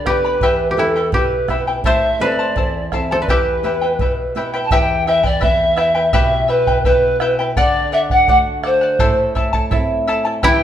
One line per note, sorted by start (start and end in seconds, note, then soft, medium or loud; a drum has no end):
0.00 0.39 D3 medium
0.00 0.17 E4 medium
0.00 0.18 A4 medium
0.00 0.76 B4 medium
0.05 0.35 B3 soft
0.05 0.35 D4 soft
0.05 0.70 G4 medium
0.05 0.35 G4 soft
0.05 0.69 B4 medium
0.05 0.24 B4 soft
0.05 0.25 D5 medium
0.05 0.24 G5 soft
0.05 0.23 B5 soft
0.05 bombo rim soft
0.05 bombo low soft
0.25 0.42 B4 soft
0.25 0.43 D5 soft
0.25 0.42 B5 soft
0.41 1.11 E2 medium
0.41 0.77 E4 medium
0.41 0.78 G4 medium
0.41 0.78 B4 medium
0.41 0.77 E5 medium
0.41 0.78 G5 medium
0.41 bombo low medium
0.70 1.14 G4 soft
0.70 0.78 B4 medium
0.77 1.34 B3 soft
0.77 1.35 E4 soft
0.77 0.96 E4 medium
0.77 3.06 E4 medium
0.77 1.35 G4 soft
0.77 1.12 A4 medium
0.77 0.96 B4 medium
0.77 0.96 E5 soft
0.77 0.95 G5 medium
0.96 1.13 E4 soft
0.96 1.14 B4 soft
0.96 1.13 G5 soft
1.12 1.82 B2 medium
1.12 1.49 E4 soft
1.12 3.18 G4 medium
1.12 1.63 B4 medium
1.12 1.49 B4 soft
1.12 1.48 E5 soft
1.12 1.50 G5 soft
1.12 bombo low medium
1.48 1.77 B3 soft
1.48 1.77 E4 soft
1.48 1.68 E4 soft
1.48 1.78 G4 medium
1.48 1.67 B4 soft
1.48 1.67 E5 soft
1.48 1.66 G5 soft
1.48 bombo rim soft
1.48 bombo low soft
1.67 1.85 E4 soft
1.67 1.85 B4 soft
1.67 1.85 G5 soft
1.84 2.54 A2 medium
1.84 2.21 E4 medium
1.84 2.21 A4 medium
1.84 2.21 C5 medium
1.84 2.27 C5 medium
1.84 2.23 E5 medium
1.84 2.20 E5 medium
1.84 2.21 A5 medium
1.84 bombo low medium
2.19 2.77 C4 soft
2.19 2.78 E4 soft
2.19 2.39 E4 soft
2.19 2.78 A4 soft
2.19 3.21 B4 medium
2.19 2.39 C5 soft
2.19 2.83 D5 medium
2.19 2.39 E5 medium
2.19 2.38 A5 medium
2.39 2.56 E4 soft
2.39 2.56 C5 soft
2.39 2.56 A5 soft
2.56 3.25 E2 medium
2.56 2.92 E4 soft
2.56 2.93 C5 soft
2.56 2.91 E5 soft
2.56 2.93 A5 soft
2.56 bombo low medium
2.92 3.21 C4 soft
2.92 3.21 E4 soft
2.92 3.11 E4 soft
2.92 3.21 A4 soft
2.92 3.11 C5 soft
2.92 3.10 E5 medium
2.92 3.10 A5 medium
2.92 bombo rim soft
2.92 bombo low soft
3.11 3.29 E4 soft
3.11 3.18 A4 medium
3.11 3.16 C5 medium
3.11 3.29 C5 soft
3.11 3.29 A5 soft
3.21 4.99 B4 soft
3.21 3.30 D5 soft
3.28 3.98 E2 medium
3.28 3.63 E4 medium
3.28 3.64 G4 medium
3.28 5.34 G4 medium
3.28 4.36 B4 medium
3.28 3.64 B4 medium
3.28 3.63 E5 medium
3.28 3.65 G5 medium
3.28 bombo low medium
3.63 4.21 B3 soft
3.63 4.21 E4 soft
3.63 3.82 E4 medium
3.63 4.21 G4 soft
3.63 3.81 B4 medium
3.63 3.82 E5 soft
3.63 3.80 G5 medium
3.81 4.00 E4 soft
3.81 4.00 B4 soft
3.81 3.99 G5 soft
3.99 4.69 B2 medium
3.99 4.36 E4 soft
3.99 4.36 B4 soft
3.99 4.35 E5 soft
3.99 4.36 G5 soft
3.99 bombo low medium
4.35 4.64 B3 soft
4.35 4.64 E4 soft
4.35 4.54 E4 medium
4.35 4.64 G4 soft
4.35 4.53 B4 medium
4.35 4.54 E5 medium
4.35 4.52 G5 medium
4.54 4.71 E4 soft
4.54 4.71 B4 soft
4.54 4.71 G5 medium
4.64 4.73 A5 medium
4.71 6.10 E2 medium
4.71 5.06 E4 medium
4.71 5.07 G4 medium
4.71 5.07 B4 medium
4.71 5.06 E5 medium
4.71 5.08 G5 loud
4.71 5.07 G5 loud
4.71 bombo low medium
5.07 5.24 E4 medium
5.07 5.23 B4 medium
5.07 5.24 E5 loud
5.07 5.25 E5 medium
5.07 5.22 G5 medium
5.23 5.40 E4 soft
5.23 5.40 B4 medium
5.23 5.43 D5 medium
5.23 5.41 G5 medium
5.23 bombo low medium
5.41 6.12 B3 soft
5.41 5.76 E4 medium
5.41 6.12 E4 soft
5.41 6.12 G4 medium
5.41 5.76 B4 medium
5.41 5.75 E5 medium
5.41 5.78 E5 medium
5.41 5.77 G5 medium
5.41 bombo low medium
5.76 5.95 E4 medium
5.76 5.94 B4 medium
5.76 5.95 E5 medium
5.76 6.12 E5 medium
5.76 5.94 G5 medium
5.76 bombo rim medium
5.95 6.12 E4 soft
5.95 6.13 B4 soft
5.95 6.13 G5 medium
6.13 7.53 B2 medium
6.13 6.48 E4 medium
6.13 6.49 G4 medium
6.13 6.48 B4 loud
6.13 6.47 E5 medium
6.13 6.49 G5 medium
6.13 bombo low medium
6.48 6.67 E4 medium
6.48 6.67 B4 medium
6.48 6.83 B4 medium
6.48 6.67 E5 soft
6.48 6.66 G5 medium
6.67 6.84 E4 soft
6.67 6.85 B4 medium
6.67 6.85 G5 medium
6.67 bombo low medium
6.84 7.55 B3 soft
6.84 7.20 E4 medium
6.84 7.55 E4 medium
6.84 7.55 G4 medium
6.84 7.35 B4 medium
6.84 7.20 B4 medium
6.84 7.19 E5 soft
6.84 7.20 G5 medium
6.84 bombo low medium
7.20 7.39 E4 medium
7.20 7.39 B4 medium
7.20 7.39 E5 medium
7.20 7.38 G5 medium
7.20 bombo rim medium
7.39 7.58 E4 soft
7.39 7.56 B4 soft
7.39 7.57 G5 medium
7.56 8.96 D3 medium
7.56 7.91 A4 medium
7.56 7.90 D5 medium
7.56 7.92 D5 medium
7.56 7.92 F#5 medium
7.56 bombo low medium
7.92 8.10 A4 medium
7.92 8.11 D5 medium
7.92 7.99 E5 medium
7.92 8.10 F#5 medium
8.10 8.27 D5 soft
8.10 8.28 F#5 medium
8.10 bombo low medium
8.28 8.98 A3 soft
8.28 8.98 D4 soft
8.28 8.98 F#4 medium
8.28 8.62 A4 soft
8.28 8.62 D5 medium
8.28 8.36 F#5 medium
8.28 8.63 F#5 medium
8.28 bombo low medium
8.63 8.82 A4 medium
8.63 9.32 C5 medium
8.63 8.82 D5 medium
8.63 8.80 F#5 medium
8.63 bombo rim medium
8.81 9.00 D5 soft
8.81 8.99 F#5 medium
8.99 10.39 A2 medium
8.99 9.35 E4 medium
8.99 9.35 A4 medium
8.99 9.35 C5 medium
8.99 9.34 E5 medium
8.99 9.35 A5 loud
8.99 bombo low medium
9.35 9.53 E4 medium
9.35 9.53 A4 medium
9.35 9.53 E5 medium
9.35 9.52 A5 medium
9.35 bombo low medium
9.53 9.70 E4 soft
9.53 9.71 A4 medium
9.53 9.71 A5 medium
9.53 bombo low medium
9.71 10.40 A3 soft
9.71 10.41 C4 soft
9.71 10.07 E4 medium
9.71 10.41 E4 medium
9.71 10.07 A4 medium
9.71 10.06 E5 medium
9.71 10.08 A5 medium
9.71 bombo low medium
10.07 10.25 E4 medium
10.07 10.25 A4 medium
10.07 10.25 E5 medium
10.07 10.24 A5 medium
10.25 10.42 E4 soft
10.25 10.43 A4 soft
10.25 10.43 A5 medium
10.43 10.63 E2 medium
10.43 10.63 E4 medium
10.43 10.63 E4 loud
10.43 10.63 G4 medium
10.43 10.63 B4 medium
10.43 10.63 E5 medium
10.43 10.63 G5 medium
10.43 10.63 G5 loud
10.43 bombo low medium